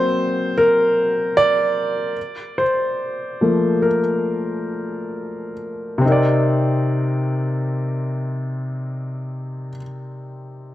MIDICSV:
0, 0, Header, 1, 2, 480
1, 0, Start_track
1, 0, Tempo, 797872
1, 1549, Tempo, 839161
1, 1550, Time_signature, 4, 2, 24, 8
1, 2509, Tempo, 887574
1, 3469, Tempo, 917431
1, 5937, End_track
2, 0, Start_track
2, 0, Title_t, "Grand piano"
2, 0, Program_c, 0, 0
2, 0, Control_c, 0, 64, 127
2, 0, Note_on_c, 0, 54, 49
2, 0, Note_on_c, 0, 58, 45
2, 0, Note_on_c, 0, 60, 56
2, 0, Note_on_c, 0, 72, 103
2, 346, Note_on_c, 0, 70, 91
2, 357, Note_off_c, 0, 72, 0
2, 798, Note_off_c, 0, 70, 0
2, 824, Note_on_c, 0, 74, 101
2, 1282, Note_off_c, 0, 54, 0
2, 1283, Note_off_c, 0, 58, 0
2, 1285, Note_off_c, 0, 60, 0
2, 1312, Control_c, 0, 64, 0
2, 1402, Control_c, 0, 64, 127
2, 1552, Note_on_c, 0, 72, 77
2, 1572, Note_off_c, 0, 74, 0
2, 2028, Note_on_c, 0, 53, 43
2, 2033, Note_on_c, 0, 57, 38
2, 2036, Note_on_c, 0, 58, 46
2, 2263, Note_on_c, 0, 70, 65
2, 2288, Note_off_c, 0, 72, 0
2, 2360, Note_off_c, 0, 53, 0
2, 2363, Note_off_c, 0, 57, 0
2, 2364, Note_off_c, 0, 58, 0
2, 3201, Note_off_c, 0, 70, 0
2, 3443, Note_on_c, 0, 48, 66
2, 3462, Note_on_c, 0, 60, 60
2, 3476, Control_c, 0, 64, 0
2, 3480, Note_on_c, 0, 63, 60
2, 3495, Note_on_c, 0, 70, 59
2, 3516, Note_on_c, 0, 74, 73
2, 3560, Control_c, 0, 64, 127
2, 5381, Note_off_c, 0, 48, 0
2, 5399, Note_off_c, 0, 60, 0
2, 5417, Note_off_c, 0, 63, 0
2, 5432, Note_off_c, 0, 70, 0
2, 5453, Note_off_c, 0, 74, 0
2, 5937, End_track
0, 0, End_of_file